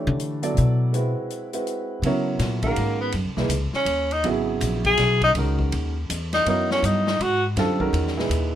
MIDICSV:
0, 0, Header, 1, 6, 480
1, 0, Start_track
1, 0, Tempo, 369004
1, 1205, Time_signature, 3, 2, 24, 8
1, 11124, End_track
2, 0, Start_track
2, 0, Title_t, "Grand piano"
2, 0, Program_c, 0, 0
2, 0, Note_on_c, 0, 52, 51
2, 0, Note_on_c, 0, 57, 46
2, 0, Note_on_c, 0, 62, 53
2, 0, Note_on_c, 0, 67, 51
2, 0, Note_on_c, 0, 73, 54
2, 487, Note_off_c, 0, 52, 0
2, 489, Note_off_c, 0, 57, 0
2, 491, Note_off_c, 0, 62, 0
2, 492, Note_off_c, 0, 67, 0
2, 493, Note_off_c, 0, 73, 0
2, 550, Note_on_c, 0, 54, 61
2, 551, Note_on_c, 0, 59, 48
2, 562, Note_on_c, 0, 64, 48
2, 564, Note_on_c, 0, 69, 51
2, 567, Note_on_c, 0, 74, 66
2, 1170, Note_off_c, 0, 54, 0
2, 1170, Note_off_c, 0, 59, 0
2, 1176, Note_off_c, 0, 64, 0
2, 1177, Note_off_c, 0, 69, 0
2, 1178, Note_off_c, 0, 74, 0
2, 1205, Note_on_c, 0, 56, 61
2, 1220, Note_on_c, 0, 60, 51
2, 1227, Note_on_c, 0, 64, 56
2, 1236, Note_on_c, 0, 66, 47
2, 1239, Note_on_c, 0, 71, 61
2, 1927, Note_off_c, 0, 56, 0
2, 1934, Note_off_c, 0, 60, 0
2, 1938, Note_off_c, 0, 64, 0
2, 1942, Note_off_c, 0, 66, 0
2, 1944, Note_off_c, 0, 71, 0
2, 1995, Note_on_c, 0, 60, 50
2, 1996, Note_on_c, 0, 56, 54
2, 2003, Note_on_c, 0, 64, 49
2, 2008, Note_on_c, 0, 66, 48
2, 2010, Note_on_c, 0, 71, 59
2, 2612, Note_off_c, 0, 56, 0
2, 2612, Note_off_c, 0, 60, 0
2, 2616, Note_off_c, 0, 64, 0
2, 2618, Note_off_c, 0, 66, 0
2, 2619, Note_off_c, 0, 71, 0
2, 2663, Note_on_c, 0, 59, 64
2, 2665, Note_on_c, 0, 54, 65
2, 2667, Note_on_c, 0, 64, 65
2, 2675, Note_on_c, 0, 70, 58
2, 2688, Note_on_c, 0, 73, 71
2, 3376, Note_off_c, 0, 54, 0
2, 3376, Note_off_c, 0, 59, 0
2, 3378, Note_off_c, 0, 64, 0
2, 3382, Note_off_c, 0, 70, 0
2, 3388, Note_off_c, 0, 73, 0
2, 3436, Note_on_c, 0, 51, 61
2, 3448, Note_on_c, 0, 56, 54
2, 3452, Note_on_c, 0, 61, 57
2, 3458, Note_on_c, 0, 66, 58
2, 3469, Note_on_c, 0, 70, 79
2, 4053, Note_off_c, 0, 51, 0
2, 4058, Note_off_c, 0, 56, 0
2, 4060, Note_off_c, 0, 61, 0
2, 4063, Note_off_c, 0, 66, 0
2, 4069, Note_off_c, 0, 70, 0
2, 4379, Note_on_c, 0, 52, 59
2, 4384, Note_on_c, 0, 58, 57
2, 4391, Note_on_c, 0, 63, 56
2, 4402, Note_on_c, 0, 68, 59
2, 4408, Note_on_c, 0, 71, 66
2, 4541, Note_off_c, 0, 52, 0
2, 4544, Note_off_c, 0, 58, 0
2, 4547, Note_off_c, 0, 63, 0
2, 4553, Note_off_c, 0, 68, 0
2, 4556, Note_off_c, 0, 71, 0
2, 5522, Note_on_c, 0, 54, 66
2, 5523, Note_on_c, 0, 49, 72
2, 5531, Note_on_c, 0, 59, 66
2, 5539, Note_on_c, 0, 64, 65
2, 5541, Note_on_c, 0, 68, 80
2, 6857, Note_off_c, 0, 54, 0
2, 6858, Note_off_c, 0, 49, 0
2, 6861, Note_off_c, 0, 59, 0
2, 6865, Note_off_c, 0, 64, 0
2, 6867, Note_off_c, 0, 68, 0
2, 6980, Note_on_c, 0, 51, 55
2, 6989, Note_on_c, 0, 56, 59
2, 6991, Note_on_c, 0, 61, 54
2, 6997, Note_on_c, 0, 66, 52
2, 7007, Note_on_c, 0, 70, 68
2, 7695, Note_off_c, 0, 51, 0
2, 7699, Note_off_c, 0, 56, 0
2, 7700, Note_off_c, 0, 61, 0
2, 7703, Note_off_c, 0, 66, 0
2, 7708, Note_off_c, 0, 70, 0
2, 8409, Note_on_c, 0, 54, 56
2, 8415, Note_on_c, 0, 59, 55
2, 8421, Note_on_c, 0, 64, 55
2, 8425, Note_on_c, 0, 70, 58
2, 8429, Note_on_c, 0, 73, 63
2, 9129, Note_off_c, 0, 54, 0
2, 9132, Note_off_c, 0, 59, 0
2, 9135, Note_off_c, 0, 64, 0
2, 9137, Note_off_c, 0, 70, 0
2, 9139, Note_off_c, 0, 73, 0
2, 9848, Note_on_c, 0, 50, 69
2, 9850, Note_on_c, 0, 55, 62
2, 9850, Note_on_c, 0, 60, 58
2, 9863, Note_on_c, 0, 65, 64
2, 9876, Note_on_c, 0, 69, 72
2, 10119, Note_off_c, 0, 50, 0
2, 10120, Note_off_c, 0, 55, 0
2, 10120, Note_off_c, 0, 60, 0
2, 10126, Note_off_c, 0, 65, 0
2, 10133, Note_off_c, 0, 69, 0
2, 10138, Note_on_c, 0, 51, 71
2, 10142, Note_on_c, 0, 56, 66
2, 10149, Note_on_c, 0, 61, 65
2, 10157, Note_on_c, 0, 66, 60
2, 10158, Note_on_c, 0, 70, 75
2, 10562, Note_off_c, 0, 51, 0
2, 10564, Note_off_c, 0, 56, 0
2, 10567, Note_off_c, 0, 61, 0
2, 10571, Note_off_c, 0, 66, 0
2, 10572, Note_off_c, 0, 70, 0
2, 10627, Note_on_c, 0, 46, 55
2, 10631, Note_on_c, 0, 63, 59
2, 10633, Note_on_c, 0, 64, 59
2, 10640, Note_on_c, 0, 68, 54
2, 10652, Note_on_c, 0, 71, 72
2, 11124, Note_off_c, 0, 46, 0
2, 11124, Note_off_c, 0, 63, 0
2, 11124, Note_off_c, 0, 64, 0
2, 11124, Note_off_c, 0, 68, 0
2, 11124, Note_off_c, 0, 71, 0
2, 11124, End_track
3, 0, Start_track
3, 0, Title_t, "Tenor saxophone"
3, 0, Program_c, 1, 66
3, 3423, Note_on_c, 1, 58, 86
3, 3871, Note_off_c, 1, 58, 0
3, 3912, Note_on_c, 1, 59, 86
3, 4073, Note_off_c, 1, 59, 0
3, 4879, Note_on_c, 1, 61, 86
3, 5369, Note_on_c, 1, 63, 93
3, 5388, Note_off_c, 1, 61, 0
3, 5534, Note_off_c, 1, 63, 0
3, 6323, Note_on_c, 1, 68, 103
3, 6762, Note_off_c, 1, 68, 0
3, 6812, Note_on_c, 1, 63, 103
3, 6911, Note_off_c, 1, 63, 0
3, 8246, Note_on_c, 1, 63, 98
3, 8401, Note_off_c, 1, 63, 0
3, 8452, Note_on_c, 1, 63, 74
3, 8712, Note_off_c, 1, 63, 0
3, 8740, Note_on_c, 1, 61, 94
3, 8920, Note_on_c, 1, 63, 86
3, 8939, Note_off_c, 1, 61, 0
3, 9389, Note_on_c, 1, 66, 105
3, 9409, Note_off_c, 1, 63, 0
3, 9680, Note_off_c, 1, 66, 0
3, 11124, End_track
4, 0, Start_track
4, 0, Title_t, "Upright bass"
4, 0, Program_c, 2, 32
4, 89, Note_on_c, 2, 50, 106
4, 689, Note_off_c, 2, 50, 0
4, 752, Note_on_c, 2, 47, 83
4, 1469, Note_off_c, 2, 47, 0
4, 2629, Note_on_c, 2, 49, 76
4, 3101, Note_off_c, 2, 49, 0
4, 3112, Note_on_c, 2, 46, 99
4, 3583, Note_off_c, 2, 46, 0
4, 3603, Note_on_c, 2, 44, 86
4, 4069, Note_off_c, 2, 44, 0
4, 4077, Note_on_c, 2, 42, 80
4, 4227, Note_on_c, 2, 37, 55
4, 4246, Note_off_c, 2, 42, 0
4, 4375, Note_off_c, 2, 37, 0
4, 4382, Note_on_c, 2, 35, 73
4, 4528, Note_off_c, 2, 35, 0
4, 4536, Note_on_c, 2, 37, 93
4, 4831, Note_off_c, 2, 37, 0
4, 5010, Note_on_c, 2, 39, 98
4, 5491, Note_off_c, 2, 39, 0
4, 5514, Note_on_c, 2, 32, 89
4, 5984, Note_off_c, 2, 32, 0
4, 5990, Note_on_c, 2, 34, 104
4, 6462, Note_off_c, 2, 34, 0
4, 6473, Note_on_c, 2, 35, 102
4, 6944, Note_off_c, 2, 35, 0
4, 6958, Note_on_c, 2, 37, 92
4, 7426, Note_off_c, 2, 37, 0
4, 7441, Note_on_c, 2, 39, 99
4, 7908, Note_off_c, 2, 39, 0
4, 7930, Note_on_c, 2, 40, 90
4, 8392, Note_off_c, 2, 40, 0
4, 8399, Note_on_c, 2, 42, 78
4, 8867, Note_off_c, 2, 42, 0
4, 8878, Note_on_c, 2, 43, 99
4, 9346, Note_off_c, 2, 43, 0
4, 9357, Note_on_c, 2, 44, 96
4, 9826, Note_off_c, 2, 44, 0
4, 9835, Note_on_c, 2, 42, 86
4, 10305, Note_off_c, 2, 42, 0
4, 10312, Note_on_c, 2, 40, 96
4, 10783, Note_off_c, 2, 40, 0
4, 10789, Note_on_c, 2, 39, 89
4, 11124, Note_off_c, 2, 39, 0
4, 11124, End_track
5, 0, Start_track
5, 0, Title_t, "Muted upright bass strokes"
5, 4849, Note_on_c, 9, 29, 39
5, 4979, Note_off_c, 9, 29, 0
5, 11124, End_track
6, 0, Start_track
6, 0, Title_t, "Drums"
6, 254, Note_on_c, 9, 42, 48
6, 385, Note_off_c, 9, 42, 0
6, 556, Note_on_c, 9, 42, 45
6, 686, Note_off_c, 9, 42, 0
6, 739, Note_on_c, 9, 42, 42
6, 869, Note_off_c, 9, 42, 0
6, 1220, Note_on_c, 9, 42, 40
6, 1350, Note_off_c, 9, 42, 0
6, 1696, Note_on_c, 9, 42, 42
6, 1826, Note_off_c, 9, 42, 0
6, 1992, Note_on_c, 9, 42, 44
6, 2122, Note_off_c, 9, 42, 0
6, 2170, Note_on_c, 9, 42, 38
6, 2300, Note_off_c, 9, 42, 0
6, 2644, Note_on_c, 9, 51, 60
6, 2774, Note_off_c, 9, 51, 0
6, 3114, Note_on_c, 9, 44, 49
6, 3114, Note_on_c, 9, 51, 61
6, 3117, Note_on_c, 9, 38, 34
6, 3244, Note_off_c, 9, 44, 0
6, 3244, Note_off_c, 9, 51, 0
6, 3247, Note_off_c, 9, 38, 0
6, 3414, Note_on_c, 9, 51, 49
6, 3419, Note_on_c, 9, 36, 57
6, 3544, Note_off_c, 9, 51, 0
6, 3549, Note_off_c, 9, 36, 0
6, 3592, Note_on_c, 9, 51, 63
6, 3722, Note_off_c, 9, 51, 0
6, 4062, Note_on_c, 9, 51, 64
6, 4192, Note_off_c, 9, 51, 0
6, 4380, Note_on_c, 9, 38, 38
6, 4510, Note_off_c, 9, 38, 0
6, 4547, Note_on_c, 9, 44, 53
6, 4547, Note_on_c, 9, 51, 64
6, 4678, Note_off_c, 9, 44, 0
6, 4678, Note_off_c, 9, 51, 0
6, 4854, Note_on_c, 9, 38, 34
6, 4984, Note_off_c, 9, 38, 0
6, 5023, Note_on_c, 9, 51, 70
6, 5153, Note_off_c, 9, 51, 0
6, 5345, Note_on_c, 9, 51, 45
6, 5475, Note_off_c, 9, 51, 0
6, 5511, Note_on_c, 9, 51, 60
6, 5641, Note_off_c, 9, 51, 0
6, 5997, Note_on_c, 9, 44, 60
6, 5997, Note_on_c, 9, 51, 69
6, 6127, Note_off_c, 9, 44, 0
6, 6127, Note_off_c, 9, 51, 0
6, 6303, Note_on_c, 9, 51, 47
6, 6304, Note_on_c, 9, 36, 58
6, 6433, Note_off_c, 9, 51, 0
6, 6434, Note_off_c, 9, 36, 0
6, 6470, Note_on_c, 9, 51, 66
6, 6473, Note_on_c, 9, 38, 42
6, 6600, Note_off_c, 9, 51, 0
6, 6603, Note_off_c, 9, 38, 0
6, 6783, Note_on_c, 9, 51, 46
6, 6784, Note_on_c, 9, 36, 48
6, 6913, Note_off_c, 9, 51, 0
6, 6914, Note_off_c, 9, 36, 0
6, 6957, Note_on_c, 9, 51, 62
6, 7087, Note_off_c, 9, 51, 0
6, 7267, Note_on_c, 9, 36, 46
6, 7397, Note_off_c, 9, 36, 0
6, 7443, Note_on_c, 9, 51, 59
6, 7573, Note_off_c, 9, 51, 0
6, 7932, Note_on_c, 9, 44, 60
6, 7932, Note_on_c, 9, 51, 74
6, 8062, Note_off_c, 9, 44, 0
6, 8062, Note_off_c, 9, 51, 0
6, 8229, Note_on_c, 9, 51, 46
6, 8232, Note_on_c, 9, 38, 48
6, 8359, Note_off_c, 9, 51, 0
6, 8362, Note_off_c, 9, 38, 0
6, 8407, Note_on_c, 9, 51, 65
6, 8537, Note_off_c, 9, 51, 0
6, 8722, Note_on_c, 9, 38, 48
6, 8852, Note_off_c, 9, 38, 0
6, 8893, Note_on_c, 9, 44, 60
6, 8893, Note_on_c, 9, 51, 63
6, 9023, Note_off_c, 9, 44, 0
6, 9023, Note_off_c, 9, 51, 0
6, 9197, Note_on_c, 9, 38, 60
6, 9327, Note_off_c, 9, 38, 0
6, 9372, Note_on_c, 9, 51, 66
6, 9502, Note_off_c, 9, 51, 0
6, 9843, Note_on_c, 9, 51, 62
6, 9845, Note_on_c, 9, 38, 37
6, 9973, Note_off_c, 9, 51, 0
6, 9975, Note_off_c, 9, 38, 0
6, 10148, Note_on_c, 9, 36, 49
6, 10278, Note_off_c, 9, 36, 0
6, 10326, Note_on_c, 9, 51, 61
6, 10456, Note_off_c, 9, 51, 0
6, 10497, Note_on_c, 9, 38, 29
6, 10627, Note_off_c, 9, 38, 0
6, 10652, Note_on_c, 9, 38, 47
6, 10782, Note_off_c, 9, 38, 0
6, 10807, Note_on_c, 9, 44, 52
6, 10807, Note_on_c, 9, 51, 73
6, 10937, Note_off_c, 9, 44, 0
6, 10937, Note_off_c, 9, 51, 0
6, 11124, End_track
0, 0, End_of_file